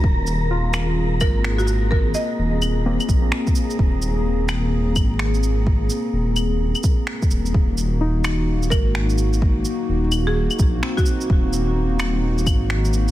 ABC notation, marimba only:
X:1
M:4/4
L:1/16
Q:"Swing 16ths" 1/4=128
K:Ebdor
V:1 name="Marimba"
z8 z2 B2 z G G z | B2 e3 z8 z3 | z16 | z16 |
z8 z2 B2 z4 | z6 z A2 z4 G3- | G3 z12 z |]